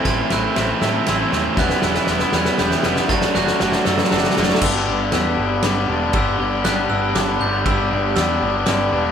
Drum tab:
CC |------------------------|------------------------|------------------------|x-----------------------|
RD |x---x---x-------x-------|------------------------|------------------------|--------x-------x-------|
SD |o---o---o---o---o---o---|o-o-o-o-o-o-o-o-o-o-o-o-|o-o-o-o-o-o-o-oooooooooo|--------o-------o-------|
BD |o-----------------------|o-----------------------|o-----------------------|o-----------------------|

CC |------------------------|------------------------|
RD |x-------x-------x-------|x-------x-------x-------|
SD |--------o-------o-------|--------o-------o-------|
BD |o-----------------------|o-----------------------|